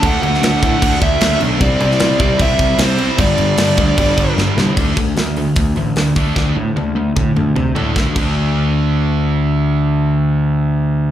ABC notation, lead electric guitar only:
X:1
M:4/4
L:1/8
Q:1/4=151
K:Dmix
V:1 name="Lead electric guitar"
f f4 e2 z | d d2 d e2 c2 | d6 z2 | z8 |
z8 | z8 | z8 |]